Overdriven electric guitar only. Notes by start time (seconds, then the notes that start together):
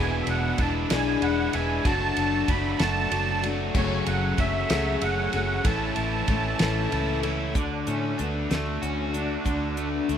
Already playing: E2 B2 E3 G#3 D4 E4
0.27 E3 G#3 D4 E4
0.59 E3 G#3 D4 E4
0.90 E3 G#3 D4 E4
1.22 E3 G#3 D4 E4
1.54 E3 G#3 D4 E4
1.85 F#3 A3 D4 F#4
2.17 A3 D4 F#4
2.49 F#3 A3 D4 F#4
2.80 A3 D4 F#4
3.12 F#3 A3 D4 F#4
3.44 A3 D4 F#4
3.74 F#2 C#3 F#3 A3 C#4 F#4
4.06 F#3 A3 C#4 F#4
4.37 F#3 A3 C#4 F#4
4.70 F#3 A3 C#4 F#4
5.01 F#3 A3 C#4 F#4
5.32 F#3 A3 C#4 F#4
5.64 A2 E3 A3 C#4 E4
5.95 A3 C#4 E4
6.28 E3 A3 C#4 E4
6.60 A3 C#4 E4
6.91 E3 A3 C#4 E4
7.23 A3 C#4 E4
7.55 D3
7.87 A3
8.18 D4
8.50 A3
8.82 F#4
9.14 D4
9.46 D3
9.78 A3
10.09 D4